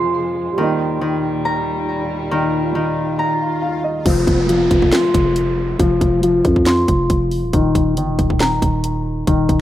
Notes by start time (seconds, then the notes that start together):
Already playing: F2 C3 F3 G#3 C4 F4 C6, downlifter
0.53 G3
0.58 D#2 A#2 D#3 G3 A#3, swell
0.62 D#4
1.01 D#3
1.45 A#5
2.31 D#3
2.75 D#3
3.19 A#5
3.62 F5
3.84 D#5
4.06 F1 F3, kick, closed hi-hat, crash, downlifter
4.27 F1, kick, closed hi-hat
4.49 F3, closed hi-hat
4.71 F1, kick, closed hi-hat
4.82 kick
4.92 C6, snare, closed hi-hat
5.14 F1, kick, closed hi-hat
5.36 closed hi-hat
5.79 F1 F3, kick, closed hi-hat
6.01 F1, kick, closed hi-hat
6.23 F3, closed hi-hat
6.45 F2, kick, closed hi-hat
6.56 kick
6.66 C6, snare, closed hi-hat
6.88 F1, kick, closed hi-hat
7.10 F1, kick, closed hi-hat
7.31 open hi-hat
7.43 D#1
7.53 D#1 D#3, kick, closed hi-hat
7.75 D#1, kick, closed hi-hat
7.97 G1 D#3, closed hi-hat
8.08 D#1
8.19 D#1, kick, closed hi-hat
8.30 kick
8.40 A#5, snare, closed hi-hat
8.62 D#1, kick, closed hi-hat
8.84 closed hi-hat
9.27 D#1 D#3, kick, closed hi-hat
9.49 D#1, kick, closed hi-hat